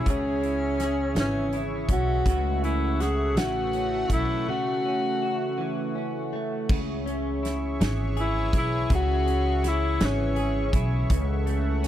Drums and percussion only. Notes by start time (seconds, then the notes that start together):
0.06 kick, closed hi-hat
0.43 closed hi-hat
0.80 snare, closed hi-hat
1.16 snare, closed hi-hat
1.52 closed hi-hat
1.89 kick, closed hi-hat
2.26 kick, closed hi-hat
2.64 closed hi-hat
3.00 snare, closed hi-hat
3.37 snare, closed hi-hat
3.73 closed hi-hat
4.10 kick, closed hi-hat
6.69 kick, crash
7.07 closed hi-hat
7.45 snare, closed hi-hat
7.81 snare, closed hi-hat
8.17 closed hi-hat
8.53 kick, closed hi-hat
8.90 kick, closed hi-hat
9.27 closed hi-hat
9.64 snare, closed hi-hat
10.00 snare, closed hi-hat
10.36 closed hi-hat
10.73 kick, closed hi-hat
11.10 kick, closed hi-hat
11.47 closed hi-hat
11.84 snare, closed hi-hat